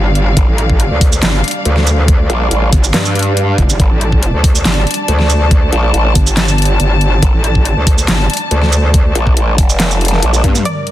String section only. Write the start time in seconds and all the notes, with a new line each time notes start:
Already playing: G3 D4 D5 F5
3.80 A5
10.65 G2 G3 A#4 D5